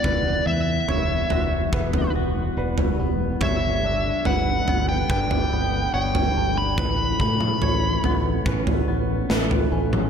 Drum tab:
SD |----------------|----------------|------------o---|
T2 |----------------|----------------|---o-----------o|
FT |o---o-o--o---o--|o---o-o--o---o--|o---o-o--o---o--|
BD |o-------o-------|o-------o-------|o-o-----o-------|